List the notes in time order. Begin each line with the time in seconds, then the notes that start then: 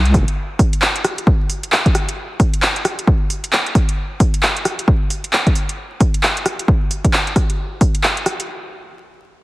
Already playing: C2
0.05 closed hi-hat
0.14 F1, kick, open hi-hat
0.28 closed hi-hat
0.59 kick, open hi-hat
0.73 closed hi-hat
0.82 clap
0.96 closed hi-hat
1.04 cross-stick, open hi-hat
1.18 closed hi-hat
1.27 kick
1.50 open hi-hat
1.63 closed hi-hat
1.72 clap
1.86 kick, closed hi-hat
1.95 cross-stick, open hi-hat
2.09 closed hi-hat
2.40 kick, open hi-hat
2.54 closed hi-hat
2.62 clap
2.76 closed hi-hat
2.85 cross-stick, open hi-hat
2.99 closed hi-hat
3.07 kick
3.30 open hi-hat
3.44 closed hi-hat
3.53 clap
3.66 closed hi-hat
3.75 kick, open hi-hat
3.89 closed hi-hat
4.20 kick, open hi-hat
4.34 closed hi-hat
4.43 clap
4.57 closed hi-hat
4.65 cross-stick, open hi-hat
4.79 closed hi-hat
4.88 kick
5.10 open hi-hat
5.24 closed hi-hat
5.33 clap
5.47 kick, closed hi-hat
5.55 open hi-hat
5.69 closed hi-hat
6.01 kick, open hi-hat
6.14 closed hi-hat
6.23 clap
6.37 closed hi-hat
6.46 cross-stick, open hi-hat
6.59 closed hi-hat
6.68 kick
6.91 open hi-hat
7.05 kick, closed hi-hat
7.13 clap
7.27 closed hi-hat
7.36 kick, cross-stick, open hi-hat
7.50 closed hi-hat
7.81 kick, open hi-hat
7.95 closed hi-hat
8.03 clap
8.17 closed hi-hat
8.26 cross-stick, open hi-hat
8.40 closed hi-hat